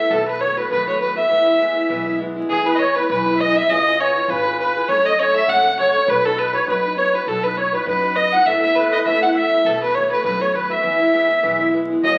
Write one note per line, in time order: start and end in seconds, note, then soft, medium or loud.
0.00 0.11 E4 soft
0.00 0.10 A4 soft
0.00 0.12 E5 medium
0.10 0.59 B1 loud
0.10 0.26 B2 medium
0.10 0.27 D#3 medium
0.10 0.27 A3 medium
0.10 0.27 B3 medium
0.10 0.25 F#4 medium
0.10 0.27 A4 medium
0.10 0.28 A4 medium
0.27 0.40 A3 soft
0.27 0.40 B3 soft
0.27 0.40 F#4 soft
0.27 0.39 B4 medium
0.27 0.42 B4 medium
0.40 0.56 D#3 medium
0.40 0.57 A3 medium
0.40 0.57 B3 medium
0.40 0.56 F#4 medium
0.40 0.59 C#5 medium
0.40 0.56 C#5 medium
0.57 0.71 A3 soft
0.57 0.70 B3 soft
0.57 0.70 F#4 medium
0.57 0.70 B4 medium
0.57 0.69 B4 medium
0.70 1.19 F#2 medium
0.70 0.87 B2 medium
0.70 0.87 D#3 medium
0.70 0.88 A3 medium
0.70 0.87 B3 medium
0.70 0.86 F#4 medium
0.70 0.99 B4 medium
0.70 0.86 B4 medium
0.87 1.00 A3 soft
0.87 0.99 B3 soft
0.87 1.00 F#4 medium
0.87 0.99 C#5 medium
1.00 1.16 D#3 medium
1.00 1.16 A3 medium
1.00 1.17 B3 medium
1.00 1.14 F#4 medium
1.00 1.15 B4 medium
1.00 1.17 B4 medium
1.15 1.30 A3 soft
1.15 1.29 B3 soft
1.15 1.29 F#4 medium
1.15 2.16 E5 loud
1.15 2.16 E5 medium
1.29 1.78 E2 medium
1.29 1.46 E3 medium
1.29 1.47 G#3 medium
1.29 1.47 B3 medium
1.29 1.45 E4 medium
1.46 1.59 G#3 soft
1.46 1.60 B3 soft
1.46 1.60 E4 soft
1.59 1.76 E3 medium
1.59 1.76 G#3 medium
1.59 1.76 B3 medium
1.59 1.74 E4 medium
1.76 1.88 G#3 soft
1.76 1.89 B3 medium
1.76 1.89 E4 medium
1.88 2.38 B1 medium
1.88 2.06 E3 medium
1.88 2.06 G#3 medium
1.88 2.06 B3 medium
1.88 2.05 E4 loud
2.06 2.19 G#3 soft
2.06 2.20 B3 medium
2.06 2.19 E4 medium
2.19 2.36 E3 medium
2.19 2.36 G#3 medium
2.19 2.36 B3 medium
2.19 2.35 E4 medium
2.36 2.49 G#3 soft
2.36 2.49 B3 medium
2.36 2.49 E4 medium
2.49 2.98 E2 medium
2.49 2.66 E3 medium
2.49 2.66 G#3 medium
2.49 2.66 B3 medium
2.49 2.64 E4 medium
2.49 2.68 G#4 loud
2.49 2.65 G#4 medium
2.65 2.78 G#3 soft
2.65 2.79 B3 soft
2.65 2.79 E4 medium
2.65 2.77 B4 medium
2.76 2.95 E3 medium
2.76 2.96 G#3 medium
2.76 2.97 C#5 medium
2.76 2.96 C#5 medium
2.76 2.80 D#5 medium
2.76 2.79 D#5 medium
2.80 2.96 B3 medium
2.80 2.95 E4 medium
2.95 3.09 B3 soft
2.95 3.09 E4 medium
2.95 3.09 B4 loud
2.95 3.07 B4 medium
2.99 3.09 G#3 soft
3.09 3.58 B1 loud
3.09 3.26 E3 medium
3.09 3.26 G#3 medium
3.09 3.26 B3 medium
3.09 3.25 E4 medium
3.09 3.34 B4 medium
3.09 3.42 B4 loud
3.26 3.38 G#3 soft
3.26 3.39 B3 medium
3.26 3.39 E4 medium
3.36 3.55 E3 medium
3.36 3.56 G#3 medium
3.36 3.56 D#5 medium
3.36 3.39 E5 medium
3.40 3.55 B3 medium
3.40 3.54 E4 medium
3.40 3.58 D#5 loud
3.55 3.70 G#3 soft
3.55 3.70 B3 soft
3.55 3.69 E4 medium
3.55 3.71 E5 loud
3.55 3.70 E5 medium
3.69 4.17 C#2 medium
3.69 3.86 C#4 medium
3.69 3.86 F4 medium
3.69 3.86 G#4 medium
3.69 3.84 B4 medium
3.69 4.02 D#5 loud
3.69 4.00 D#5 medium
3.86 3.98 F4 soft
3.86 3.99 G#4 soft
3.86 3.99 B4 medium
3.98 4.15 C#4 medium
3.98 4.16 F4 medium
3.98 4.15 G#4 medium
3.98 4.14 B4 medium
3.98 4.30 C#5 medium
3.98 4.31 C#5 medium
4.15 4.27 F4 soft
4.15 4.28 G#4 soft
4.15 4.28 B4 medium
4.28 4.77 G#1 loud
4.28 4.45 C#4 medium
4.28 4.45 F4 medium
4.28 4.46 G#4 medium
4.28 4.59 B4 loud
4.28 4.57 B4 medium
4.28 4.44 B4 medium
4.45 4.59 F4 soft
4.45 4.59 G#4 medium
4.45 4.58 B4 medium
4.59 4.75 C#4 medium
4.59 4.76 F4 medium
4.59 4.75 G#4 medium
4.59 4.90 B4 medium
4.59 4.74 B4 medium
4.75 4.89 F4 soft
4.75 4.89 G#4 medium
4.75 4.88 B4 medium
4.88 5.37 F#2 medium
4.88 5.05 F#3 medium
4.88 5.06 A3 medium
4.88 5.05 C#4 medium
4.88 5.05 A4 medium
4.88 5.07 C#5 loud
4.88 5.05 C#5 medium
5.06 5.19 A3 soft
5.06 5.18 C#4 soft
5.06 5.19 A4 medium
5.06 5.21 D#5 loud
5.06 5.18 D#5 medium
5.19 5.35 F#3 medium
5.19 5.34 A3 medium
5.19 5.35 C#4 medium
5.19 5.33 A4 medium
5.19 5.36 C#5 loud
5.19 5.34 C#5 medium
5.34 5.47 A3 soft
5.34 5.47 C#4 soft
5.34 5.48 A4 soft
5.34 5.50 E5 loud
5.34 5.47 E5 medium
5.47 5.96 C#2 medium
5.47 5.64 F#3 medium
5.47 5.64 A3 medium
5.47 5.64 C#4 medium
5.47 5.62 A4 medium
5.47 5.79 F#5 medium
5.47 5.78 F#5 loud
5.64 5.78 A3 medium
5.64 5.77 C#4 soft
5.64 5.77 A4 medium
5.77 5.94 F#3 medium
5.77 5.94 A3 medium
5.77 5.94 C#4 medium
5.77 5.92 A4 medium
5.77 6.09 C#5 medium
5.77 6.11 C#5 loud
5.94 6.08 A3 soft
5.94 6.07 C#4 soft
5.94 6.07 A4 medium
6.07 6.56 B1 loud
6.07 6.24 B3 medium
6.07 6.24 D#4 medium
6.07 6.24 F#4 medium
6.07 6.25 B4 medium
6.07 6.23 B4 medium
6.07 6.27 B4 loud
6.24 6.37 D#4 soft
6.24 6.38 F#4 soft
6.24 6.38 A4 medium
6.24 6.40 A4 medium
6.24 6.37 B4 medium
6.37 6.53 B3 medium
6.37 6.54 D#4 medium
6.37 6.53 F#4 medium
6.37 6.53 B4 medium
6.37 6.68 B4 medium
6.37 6.51 B4 medium
6.53 6.66 D#4 soft
6.53 6.66 F#4 medium
6.53 6.67 B4 soft
6.53 6.68 C#5 medium
6.66 7.15 F#2 loud
6.66 6.83 B3 medium
6.66 6.84 D#4 medium
6.66 6.83 F#4 medium
6.66 6.95 B4 medium
6.66 6.81 B4 medium
6.66 6.99 B4 medium
6.83 6.95 D#4 soft
6.83 6.96 F#4 medium
6.83 6.96 B4 medium
6.95 7.12 B3 medium
6.95 7.13 D#4 medium
6.95 7.13 F#4 medium
6.95 7.12 B4 medium
6.95 7.14 C#5 medium
6.95 7.17 C#5 medium
7.13 7.25 D#4 soft
7.13 7.26 F#4 soft
7.13 7.26 B4 medium
7.13 7.22 B4 medium
7.13 7.30 B4 medium
7.25 7.75 B1 medium
7.25 7.43 B3 medium
7.25 7.43 D#4 medium
7.25 7.43 F#4 medium
7.25 7.45 A4 medium
7.25 7.44 A4 medium
7.25 7.27 B4 medium
7.25 7.42 B4 medium
7.43 7.56 D#4 soft
7.43 7.57 F#4 soft
7.43 7.56 B4 medium
7.43 7.59 B4 medium
7.43 7.56 B4 medium
7.56 7.73 B3 medium
7.56 7.73 D#4 medium
7.56 7.73 F#4 medium
7.56 7.71 B4 medium
7.56 7.76 C#5 medium
7.56 7.72 C#5 medium
7.72 7.85 D#4 soft
7.72 7.86 F#4 medium
7.72 7.86 B4 soft
7.72 7.86 B4 medium
7.72 7.87 B4 medium
7.86 8.34 F#2 loud
7.86 8.03 B3 medium
7.86 8.03 D#4 medium
7.86 8.03 F#4 medium
7.86 8.17 B4 medium
7.86 8.18 B4 medium
7.86 8.01 B4 medium
8.03 8.16 D#4 soft
8.03 8.17 F#4 medium
8.03 8.16 B4 medium
8.16 8.32 B3 medium
8.16 8.33 D#4 medium
8.16 8.33 F#4 medium
8.16 8.31 B4 medium
8.16 8.34 D#5 medium
8.16 8.31 D#5 medium
8.32 8.47 D#4 medium
8.32 8.47 F#4 medium
8.32 8.46 B4 medium
8.32 8.48 F#5 loud
8.32 8.45 F#5 loud
8.46 8.94 A1 medium
8.46 8.62 A2 medium
8.46 8.62 A3 medium
8.46 8.63 B3 medium
8.46 8.63 E4 medium
8.46 8.61 A4 medium
8.46 8.73 E5 medium
8.46 8.61 E5 loud
8.62 8.75 B3 soft
8.62 8.76 E4 soft
8.62 8.76 A4 medium
8.62 8.77 E5 medium
8.75 8.92 A3 medium
8.75 8.92 B3 medium
8.75 8.92 E4 medium
8.75 8.91 A4 medium
8.75 8.92 B4 medium
8.75 9.07 B4 medium
8.92 9.06 B3 soft
8.92 9.05 A4 medium
8.92 8.98 D#5 loud
9.05 9.53 E2 loud
9.05 9.22 A2 medium
9.05 9.22 A3 medium
9.05 9.22 B3 medium
9.05 9.22 E4 medium
9.05 9.20 A4 medium
9.05 9.22 E5 medium
9.05 9.24 E5 medium
9.21 9.35 B3 soft
9.21 9.36 E4 medium
9.21 9.35 A4 medium
9.21 9.36 F#5 medium
9.35 9.52 A3 medium
9.35 9.52 B3 medium
9.35 9.52 E4 medium
9.35 9.50 A4 medium
9.35 9.66 E5 medium
9.35 9.68 E5 medium
9.51 9.65 B3 soft
9.51 9.66 E4 soft
9.51 9.65 A4 soft
9.65 10.13 B1 medium
9.65 9.82 B2 medium
9.65 9.82 D#3 medium
9.65 9.81 A3 medium
9.65 9.82 B3 medium
9.65 9.80 F#4 medium
9.65 9.80 A4 medium
9.65 9.82 A4 medium
9.81 9.95 A3 soft
9.81 9.95 B3 soft
9.81 9.95 F#4 soft
9.81 9.95 B4 medium
9.81 9.96 B4 medium
9.94 10.11 D#3 medium
9.94 10.12 A3 medium
9.94 10.12 B3 medium
9.94 10.10 F#4 medium
9.94 10.06 C#5 medium
9.94 10.11 C#5 medium
10.07 10.24 F#4 soft
10.07 10.23 B4 medium
10.07 10.11 C#5 medium
10.12 10.24 A3 soft
10.12 10.24 B3 soft
10.12 10.24 B4 medium
10.23 10.72 F#2 loud
10.23 10.40 B2 medium
10.23 10.41 D#3 medium
10.23 10.41 A3 medium
10.23 10.41 B3 medium
10.23 10.39 F#4 medium
10.23 10.40 B4 medium
10.23 10.43 B4 medium
10.40 10.54 A3 medium
10.40 10.53 B3 soft
10.40 10.54 F#4 medium
10.40 10.55 C#5 medium
10.40 10.57 C#5 medium
10.53 10.70 D#3 medium
10.53 10.70 A3 medium
10.53 10.70 B3 medium
10.53 10.68 F#4 medium
10.53 10.70 B4 medium
10.53 10.73 B4 medium
10.70 10.83 A3 soft
10.70 10.82 B3 soft
10.70 10.83 F#4 medium
10.70 11.69 E5 medium
10.70 11.74 E5 medium
10.82 11.32 E2 loud
10.82 10.99 E3 medium
10.82 11.00 G#3 medium
10.82 11.00 B3 medium
10.82 10.98 E4 medium
10.99 11.12 G#3 soft
10.99 11.13 B3 soft
10.99 11.13 E4 medium
11.12 11.29 E3 medium
11.12 11.30 G#3 medium
11.12 11.29 B3 medium
11.12 11.27 E4 medium
11.28 11.42 G#3 soft
11.28 11.42 B3 medium
11.28 11.43 E4 medium
11.43 11.92 B1 medium
11.43 11.60 E3 medium
11.43 11.60 G#3 medium
11.43 11.59 B3 medium
11.43 11.58 E4 medium
11.59 11.72 G#3 medium
11.59 11.73 B3 medium
11.59 11.73 E4 medium
11.73 11.90 E3 medium
11.73 11.90 G#3 medium
11.73 11.90 B3 medium
11.73 11.88 E4 medium
11.90 12.03 G#3 medium
11.90 12.04 B3 medium
11.90 12.03 E4 soft
12.03 12.18 F#1 loud
12.03 12.18 F#3 medium
12.03 12.18 A#3 medium
12.03 12.18 C#4 medium
12.03 12.18 F#4 medium
12.03 12.18 D#5 medium